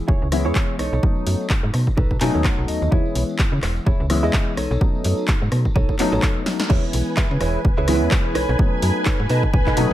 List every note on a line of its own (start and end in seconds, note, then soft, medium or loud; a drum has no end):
0.00 0.29 E3 medium
0.00 0.30 G#3 medium
0.00 0.30 B3 medium
0.00 0.30 C#4 medium
0.00 0.30 E4 medium
0.08 0.17 E1 medium
0.08 0.27 E4 medium
0.08 0.27 G#4 medium
0.08 0.27 C#5 medium
0.08 kick loud
0.22 0.47 C#2 medium
0.22 tambourine soft
0.32 0.78 E3 medium
0.32 0.78 G#3 medium
0.32 0.78 B3 medium
0.32 0.78 C#4 medium
0.32 0.78 E4 loud
0.32 cross-stick medium
0.32 open hi-hat loud
0.45 0.52 E2 medium
0.45 0.74 E4 medium
0.45 0.74 G#4 medium
0.45 0.74 C#5 medium
0.45 tambourine medium
0.55 kick loud
0.55 clap loud
0.68 tambourine soft
0.79 0.90 B1 soft
0.79 1.46 D#4 medium
0.79 1.46 A4 medium
0.79 1.46 C#5 loud
0.79 cross-stick medium
0.79 open hi-hat medium
0.93 1.00 B1 loud
0.93 tambourine medium
1.02 2.18 F#3 medium
1.02 2.19 A3 medium
1.02 2.19 B3 medium
1.02 2.19 C#4 medium
1.02 2.19 D#4 medium
1.02 kick loud
1.15 tambourine soft
1.27 1.36 F#2 medium
1.27 open hi-hat loud
1.41 tambourine medium
1.50 kick loud
1.50 clap loud
1.63 1.70 G#2 medium
1.63 muted clean electric guitar stroke medium
1.63 tambourine soft
1.73 1.91 B2 medium
1.73 muted clean electric guitar stroke soft
1.73 cross-stick medium
1.73 open hi-hat medium
1.87 kick medium
1.87 tambourine medium
1.97 2.06 B1 medium
1.97 2.16 D#4 medium
1.97 2.16 A4 medium
1.97 2.16 B4 medium
1.97 kick loud
1.97 tambourine medium
2.11 2.19 B2 soft
2.11 kick medium
2.11 tambourine soft
2.21 2.30 B2 medium
2.21 2.90 F#3 medium
2.21 2.90 A3 medium
2.21 2.90 B3 medium
2.21 2.90 C#4 medium
2.21 2.90 D#4 loud
2.21 2.43 G#5 medium
2.21 clap medium
2.21 open hi-hat loud
2.34 2.49 D#2 medium
2.34 2.63 D#4 medium
2.34 2.63 A4 medium
2.34 2.63 C#5 medium
2.34 tambourine medium
2.44 2.67 F#5 medium
2.44 kick loud
2.44 cross-stick medium
2.44 clap loud
2.58 2.65 B1 medium
2.58 tambourine soft
2.68 2.79 D#2 soft
2.68 2.90 D#5 medium
2.68 open hi-hat medium
2.82 2.89 D#2 medium
2.82 tambourine medium
2.91 3.01 E2 loud
2.91 4.07 E3 medium
2.91 4.08 G#3 medium
2.91 4.08 B3 medium
2.91 4.08 C#4 medium
2.91 3.22 E4 loud
2.91 4.08 E4 medium
2.91 3.22 G#4 loud
2.91 3.23 C#5 loud
2.91 kick loud
2.91 tambourine medium
3.05 tambourine soft
3.15 3.24 B1 medium
3.15 open hi-hat loud
3.29 tambourine medium
3.39 kick loud
3.39 clap loud
3.52 3.59 C#3 medium
3.52 muted clean electric guitar stroke medium
3.52 tambourine soft
3.62 3.79 E1 medium
3.62 muted clean electric guitar stroke soft
3.62 cross-stick medium
3.62 clap medium
3.62 open hi-hat medium
3.76 tambourine medium
3.86 3.95 E1 medium
3.86 4.05 E4 medium
3.86 4.05 G#4 medium
3.86 4.05 C#5 medium
3.86 kick loud
3.86 tambourine medium
4.00 4.25 C#2 loud
4.00 tambourine soft
4.10 4.56 E3 medium
4.10 4.56 G#3 medium
4.10 4.56 B3 medium
4.10 4.56 C#4 medium
4.10 4.57 E4 loud
4.10 cross-stick medium
4.10 open hi-hat loud
4.23 4.30 E2 loud
4.23 4.52 E4 medium
4.23 4.52 G#4 medium
4.23 4.53 D#5 medium
4.23 tambourine medium
4.33 kick loud
4.33 clap loud
4.47 tambourine soft
4.57 4.68 B1 soft
4.57 5.24 D#4 medium
4.57 5.24 A4 medium
4.57 5.24 C#5 loud
4.57 cross-stick medium
4.57 open hi-hat medium
4.71 4.78 B1 loud
4.71 tambourine medium
4.81 5.97 F#3 medium
4.81 5.97 A3 medium
4.81 5.97 B3 medium
4.81 5.97 C#4 medium
4.81 5.97 D#4 medium
4.81 kick loud
4.81 tambourine medium
4.95 tambourine soft
5.04 5.14 F#2 medium
5.04 open hi-hat loud
5.17 tambourine medium
5.28 kick loud
5.28 clap loud
5.41 5.49 G#2 medium
5.41 muted clean electric guitar stroke medium
5.41 tambourine soft
5.52 5.69 B2 medium
5.52 muted clean electric guitar stroke soft
5.52 cross-stick medium
5.52 open hi-hat medium
5.65 kick medium
5.65 tambourine medium
5.75 5.84 B1 medium
5.75 5.94 D#4 medium
5.75 5.94 A4 medium
5.75 5.95 C#5 loud
5.75 kick loud
5.75 tambourine medium
5.89 kick medium
5.89 tambourine soft
5.99 6.67 F#3 loud
5.99 6.68 A3 medium
5.99 6.68 B3 medium
5.99 6.68 C#4 medium
5.99 6.68 D#4 loud
5.99 clap medium
5.99 open hi-hat loud
6.12 6.19 A1 loud
6.12 6.41 D#4 medium
6.12 6.41 A4 medium
6.12 6.42 C#5 loud
6.12 tambourine medium
6.22 kick loud
6.22 cross-stick medium
6.22 clap loud
6.37 tambourine soft
6.46 snare medium
6.46 open hi-hat medium
6.59 snare loud
6.59 tambourine medium
6.69 6.79 E2 loud
6.69 7.86 E3 medium
6.69 7.86 G#3 medium
6.69 7.86 B3 medium
6.69 7.86 C#4 medium
6.69 6.83 E4 loud
6.69 7.86 E4 medium
6.69 6.84 G#4 loud
6.69 9.93 B4 medium
6.69 6.84 B4 medium
6.69 6.84 C#5 loud
6.69 9.93 G#5 medium
6.69 kick loud
6.69 crash loud
6.93 7.03 B1 medium
6.93 muted clean electric guitar stroke soft
6.93 open hi-hat loud
7.17 7.31 E4 medium
7.17 7.31 G#4 medium
7.17 7.31 B4 medium
7.17 7.31 E5 loud
7.17 kick loud
7.17 clap loud
7.31 7.38 C#3 medium
7.41 7.58 E1 medium
7.41 7.59 E4 medium
7.41 7.60 G#4 medium
7.41 7.60 B4 medium
7.41 7.60 C#5 medium
7.41 cross-stick medium
7.41 open hi-hat medium
7.65 7.73 E1 loud
7.65 kick loud
7.78 8.03 C#2 loud
7.78 7.95 E4 loud
7.78 7.95 G#4 loud
7.78 7.95 B4 medium
7.78 7.95 C#5 loud
7.88 8.34 E3 medium
7.88 8.34 G#3 medium
7.88 8.34 B3 medium
7.88 8.34 C#4 medium
7.88 8.34 E4 loud
7.88 cross-stick medium
7.88 open hi-hat loud
8.02 8.08 E2 loud
8.11 muted clean electric guitar stroke medium
8.11 kick loud
8.11 clap loud
8.25 muted clean electric guitar stroke soft
8.35 8.46 B1 soft
8.35 8.74 D#4 medium
8.35 8.74 A4 medium
8.35 8.75 B4 medium
8.35 8.75 C#5 medium
8.35 cross-stick medium
8.35 open hi-hat medium
8.49 8.56 B1 loud
8.58 9.74 F#3 medium
8.58 9.75 A3 medium
8.58 9.75 B3 medium
8.58 9.75 C#4 medium
8.58 9.75 D#4 medium
8.58 kick loud
8.82 8.91 F#2 medium
8.82 muted clean electric guitar stroke soft
8.82 open hi-hat loud
9.05 9.19 D#4 medium
9.05 9.20 A4 medium
9.05 9.20 B4 medium
9.05 9.20 C#5 loud
9.05 kick loud
9.05 clap loud
9.19 9.26 G#2 medium
9.29 9.47 B2 medium
9.29 9.48 D#4 medium
9.29 9.48 A4 medium
9.29 9.49 B4 medium
9.29 9.49 D#5 loud
9.29 9.52 A5 medium
9.29 open hi-hat loud
9.43 kick medium
9.53 9.62 B1 medium
9.53 9.76 G#5 medium
9.53 kick loud
9.66 9.75 B2 soft
9.66 9.84 D#4 loud
9.66 9.84 A4 medium
9.66 9.84 B4 loud
9.66 9.84 D#5 loud
9.66 kick medium
9.66 clap soft
9.76 9.86 B2 medium
9.76 9.93 F#3 medium
9.76 9.93 A3 medium
9.76 9.93 B3 medium
9.76 9.93 C#4 medium
9.76 9.93 D#4 loud
9.76 9.93 F#5 medium
9.76 open hi-hat loud